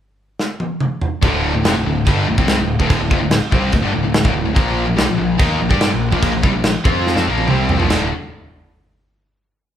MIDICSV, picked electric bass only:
0, 0, Header, 1, 2, 480
1, 0, Start_track
1, 0, Tempo, 418410
1, 1403, Time_signature, 4, 2, 24, 8
1, 11207, End_track
2, 0, Start_track
2, 0, Title_t, "Picked electric bass"
2, 0, Program_c, 0, 34
2, 1415, Note_on_c, 0, 26, 89
2, 1745, Note_off_c, 0, 26, 0
2, 1773, Note_on_c, 0, 26, 86
2, 1880, Note_off_c, 0, 26, 0
2, 1887, Note_on_c, 0, 29, 99
2, 1997, Note_off_c, 0, 29, 0
2, 2030, Note_on_c, 0, 26, 85
2, 2115, Note_off_c, 0, 26, 0
2, 2121, Note_on_c, 0, 26, 89
2, 2345, Note_off_c, 0, 26, 0
2, 2379, Note_on_c, 0, 31, 98
2, 2595, Note_off_c, 0, 31, 0
2, 2620, Note_on_c, 0, 26, 86
2, 2723, Note_off_c, 0, 26, 0
2, 2733, Note_on_c, 0, 36, 98
2, 2951, Note_off_c, 0, 36, 0
2, 2984, Note_on_c, 0, 26, 77
2, 3196, Note_off_c, 0, 26, 0
2, 3210, Note_on_c, 0, 26, 104
2, 3428, Note_off_c, 0, 26, 0
2, 3451, Note_on_c, 0, 26, 81
2, 3557, Note_off_c, 0, 26, 0
2, 3578, Note_on_c, 0, 29, 93
2, 3674, Note_off_c, 0, 29, 0
2, 3681, Note_on_c, 0, 26, 80
2, 3903, Note_off_c, 0, 26, 0
2, 4054, Note_on_c, 0, 36, 97
2, 4269, Note_off_c, 0, 36, 0
2, 4290, Note_on_c, 0, 26, 73
2, 4395, Note_off_c, 0, 26, 0
2, 4421, Note_on_c, 0, 31, 98
2, 4520, Note_off_c, 0, 31, 0
2, 4544, Note_on_c, 0, 26, 85
2, 4642, Note_off_c, 0, 26, 0
2, 4648, Note_on_c, 0, 26, 79
2, 4864, Note_off_c, 0, 26, 0
2, 4880, Note_on_c, 0, 26, 100
2, 4988, Note_off_c, 0, 26, 0
2, 5008, Note_on_c, 0, 26, 83
2, 5112, Note_off_c, 0, 26, 0
2, 5118, Note_on_c, 0, 26, 89
2, 5226, Note_off_c, 0, 26, 0
2, 5243, Note_on_c, 0, 34, 105
2, 5571, Note_off_c, 0, 34, 0
2, 5617, Note_on_c, 0, 34, 85
2, 5715, Note_off_c, 0, 34, 0
2, 5734, Note_on_c, 0, 36, 107
2, 5834, Note_off_c, 0, 36, 0
2, 5849, Note_on_c, 0, 34, 83
2, 5951, Note_off_c, 0, 34, 0
2, 5971, Note_on_c, 0, 34, 82
2, 6182, Note_off_c, 0, 34, 0
2, 6192, Note_on_c, 0, 39, 96
2, 6412, Note_off_c, 0, 39, 0
2, 6435, Note_on_c, 0, 34, 92
2, 6542, Note_off_c, 0, 34, 0
2, 6551, Note_on_c, 0, 43, 96
2, 6771, Note_off_c, 0, 43, 0
2, 6812, Note_on_c, 0, 34, 83
2, 7017, Note_off_c, 0, 34, 0
2, 7024, Note_on_c, 0, 34, 104
2, 7247, Note_off_c, 0, 34, 0
2, 7296, Note_on_c, 0, 34, 80
2, 7376, Note_off_c, 0, 34, 0
2, 7383, Note_on_c, 0, 36, 82
2, 7495, Note_off_c, 0, 36, 0
2, 7519, Note_on_c, 0, 34, 80
2, 7735, Note_off_c, 0, 34, 0
2, 7870, Note_on_c, 0, 41, 98
2, 8201, Note_off_c, 0, 41, 0
2, 8232, Note_on_c, 0, 41, 97
2, 8339, Note_off_c, 0, 41, 0
2, 8353, Note_on_c, 0, 34, 102
2, 8572, Note_off_c, 0, 34, 0
2, 8600, Note_on_c, 0, 36, 106
2, 8928, Note_off_c, 0, 36, 0
2, 8970, Note_on_c, 0, 34, 109
2, 9070, Note_off_c, 0, 34, 0
2, 9079, Note_on_c, 0, 26, 100
2, 9296, Note_off_c, 0, 26, 0
2, 11207, End_track
0, 0, End_of_file